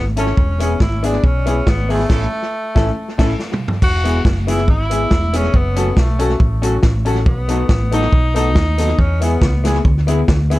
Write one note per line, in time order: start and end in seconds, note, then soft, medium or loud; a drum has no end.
0.00 0.31 G#1 medium
0.17 0.28 A3 medium
0.17 0.32 C#4 medium
0.17 0.29 C#4 medium
0.17 0.58 C#4 loud
0.17 0.32 E4 medium
0.17 0.29 E4 medium
0.17 0.32 A4 loud
0.17 0.29 A4 medium
0.17 closed hi-hat medium
0.37 0.74 E1 loud
0.37 kick loud
0.59 0.71 G#3 medium
0.59 0.75 B3 medium
0.59 0.71 B3 medium
0.59 0.80 C#4 medium
0.59 0.75 E4 medium
0.59 0.72 E4 medium
0.59 0.76 G#4 medium
0.59 0.72 G#4 medium
0.59 closed hi-hat medium
0.80 1.17 G#1 medium
0.80 1.06 E4 medium
0.80 kick loud
0.80 snare loud
1.03 1.15 G#3 medium
1.03 1.18 B3 loud
1.03 1.15 B3 medium
1.03 1.27 D4 medium
1.03 1.18 E4 medium
1.03 1.15 E4 medium
1.03 1.19 G#4 loud
1.03 1.16 G#4 loud
1.03 closed hi-hat medium
1.23 1.60 B1 medium
1.23 1.70 C#4 loud
1.23 muted clean electric guitar stroke soft
1.23 kick loud
1.46 1.58 G#3 medium
1.46 1.61 B3 loud
1.46 1.58 B3 medium
1.46 1.61 E4 medium
1.46 1.58 E4 medium
1.46 1.62 G#4 loud
1.46 1.58 G#4 medium
1.46 closed hi-hat medium
1.67 2.03 G#1 loud
1.67 1.93 B3 medium
1.67 kick loud
1.67 snare loud
1.89 2.01 G#3 medium
1.89 3.40 A3 medium
1.89 2.04 B3 loud
1.89 2.01 B3 medium
1.89 2.05 E4 medium
1.89 2.01 E4 loud
1.89 2.05 G#4 loud
1.89 2.01 G#4 medium
1.89 open hi-hat soft
2.09 2.25 A1 loud
2.09 2.25 A3 medium
2.09 2.25 C#4 medium
2.09 2.26 C#4 medium
2.09 2.25 E4 medium
2.09 2.26 E4 loud
2.09 2.25 A4 medium
2.09 2.26 A4 loud
2.09 kick loud
2.09 snare loud
2.09 crash medium
2.75 2.89 A1 loud
2.75 2.89 A3 loud
2.75 2.89 C#4 medium
2.75 2.89 E4 loud
2.75 2.90 E4 loud
2.75 2.90 A4 loud
2.75 kick loud
2.75 snare loud
3.18 3.32 A1 loud
3.18 3.32 A3 loud
3.18 3.32 C#4 loud
3.18 3.32 C#4 medium
3.18 3.32 E4 loud
3.18 3.33 E4 loud
3.18 3.33 A4 loud
3.18 3.33 A4 medium
3.18 kick loud
3.18 snare loud
3.18 crash medium
3.39 snare medium
3.54 mid tom medium
3.68 floor tom loud
3.82 4.19 E1 loud
3.82 4.23 F#4 loud
3.82 kick loud
3.82 crash loud
4.04 4.16 G#3 medium
4.04 4.19 B3 medium
4.04 4.16 B3 medium
4.04 4.20 E4 medium
4.04 4.16 E4 medium
4.04 4.20 G#4 medium
4.04 4.17 G#4 medium
4.04 closed hi-hat medium
4.25 4.68 F#1 medium
4.25 kick loud
4.25 snare loud
4.47 4.59 G#3 medium
4.47 4.62 B3 medium
4.47 4.59 B3 medium
4.47 4.63 E4 medium
4.47 4.60 E4 medium
4.47 4.67 E4 medium
4.47 4.63 G#4 loud
4.47 4.60 G#4 medium
4.47 closed hi-hat medium
4.68 5.04 G#1 loud
4.68 5.37 E4 loud
4.68 kick loud
4.90 5.02 G#3 medium
4.90 5.05 B3 medium
4.90 5.02 B3 medium
4.90 5.06 E4 medium
4.90 5.02 E4 medium
4.90 5.06 G#4 loud
4.90 5.03 G#4 medium
4.90 closed hi-hat medium
5.11 5.48 E1 medium
5.11 5.16 E4 soft
5.11 5.16 G#4 soft
5.11 kick loud
5.11 snare loud
5.33 5.45 G#3 medium
5.33 5.45 B3 medium
5.33 5.49 B3 medium
5.33 5.57 C#4 loud
5.33 5.45 E4 medium
5.33 5.49 E4 medium
5.33 5.45 G#4 medium
5.33 5.49 G#4 loud
5.33 closed hi-hat medium
5.54 5.90 F#1 loud
5.54 6.01 B3 medium
5.54 kick loud
5.76 5.88 F#3 loud
5.76 5.88 A3 loud
5.76 5.92 C#4 medium
5.76 5.88 C#4 medium
5.76 5.92 F#4 medium
5.76 5.88 F#4 medium
5.76 5.92 A4 loud
5.76 closed hi-hat medium
5.97 6.33 B1 loud
5.97 6.41 A3 medium
5.97 kick loud
5.97 snare loud
6.19 6.31 F#3 medium
6.19 6.31 A3 medium
6.19 6.35 C#4 loud
6.19 6.31 C#4 medium
6.19 6.35 F#4 loud
6.19 6.32 F#4 medium
6.19 6.35 A4 loud
6.19 closed hi-hat medium
6.40 6.77 A1 loud
6.40 kick loud
6.62 6.74 F#3 medium
6.62 6.74 A3 medium
6.62 6.78 C#4 loud
6.62 6.74 C#4 medium
6.62 6.78 F#4 loud
6.62 6.75 F#4 medium
6.62 6.78 A4 loud
6.62 closed hi-hat medium
6.83 7.26 A1 medium
6.83 muted clean electric guitar stroke soft
6.83 kick loud
6.83 snare loud
7.05 7.17 F#3 medium
7.05 7.18 A3 medium
7.05 7.21 C#4 loud
7.05 7.18 C#4 medium
7.05 7.21 F#4 medium
7.05 7.18 F#4 medium
7.05 7.21 A4 loud
7.05 closed hi-hat medium
7.26 7.63 B1 medium
7.26 7.89 B3 medium
7.26 kick loud
7.48 7.60 F#3 medium
7.48 7.61 A3 medium
7.48 7.64 B3 loud
7.48 7.64 D#4 medium
7.48 7.61 D#4 loud
7.48 7.61 F#4 medium
7.48 7.65 A4 medium
7.48 closed hi-hat medium
7.69 8.06 A1 medium
7.69 kick loud
7.69 snare loud
7.92 8.04 F#3 medium
7.92 8.04 A3 medium
7.92 8.07 B3 loud
7.92 8.07 D#4 medium
7.92 8.33 D#4 loud
7.92 8.04 D#4 medium
7.92 8.04 F#4 loud
7.92 8.08 A4 loud
7.92 closed hi-hat medium
8.13 8.56 B1 loud
8.13 kick loud
8.34 8.47 F#3 medium
8.34 8.47 A3 loud
8.34 8.50 B3 loud
8.34 8.50 D#4 medium
8.34 9.01 D#4 loud
8.34 8.47 D#4 loud
8.34 8.48 F#4 loud
8.34 8.51 A4 loud
8.34 closed hi-hat medium
8.55 8.92 D#2 loud
8.55 kick loud
8.55 snare loud
8.78 8.90 F#3 medium
8.78 8.90 A3 medium
8.78 8.93 B3 loud
8.78 8.94 D#4 medium
8.78 8.90 D#4 loud
8.78 8.90 F#4 loud
8.78 8.94 A4 loud
8.78 closed hi-hat medium
8.99 9.35 E2 medium
8.99 9.22 C#4 medium
8.99 kick loud
9.21 9.33 G#3 medium
9.21 9.36 B3 medium
9.21 9.33 B3 medium
9.21 9.62 B3 medium
9.21 9.37 E4 medium
9.21 9.34 E4 medium
9.21 9.37 G#4 medium
9.21 9.34 G#4 medium
9.21 closed hi-hat medium
9.42 9.78 C#2 medium
9.42 kick loud
9.42 snare loud
9.64 9.76 G#3 medium
9.64 9.79 B3 loud
9.64 9.76 B3 medium
9.64 9.80 E4 medium
9.64 9.77 E4 loud
9.64 9.80 G#4 loud
9.64 9.77 G#4 medium
9.64 snare medium
9.64 closed hi-hat medium
9.85 10.22 D2 loud
9.85 kick loud
10.07 10.19 G#3 medium
10.07 10.23 B3 loud
10.07 10.20 B3 medium
10.07 10.23 E4 medium
10.07 10.20 E4 medium
10.07 10.23 G#4 loud
10.07 10.20 G#4 loud
10.07 closed hi-hat medium
10.28 10.59 D2 loud
10.28 10.33 E4 soft
10.28 10.33 G#4 soft
10.28 muted clean electric guitar stroke soft
10.28 kick loud
10.28 snare loud
10.50 10.59 G#3 medium
10.50 10.59 B3 loud
10.50 10.59 B3 medium
10.50 10.59 E4 medium
10.50 10.59 E4 loud
10.50 10.59 G#4 loud
10.50 closed hi-hat medium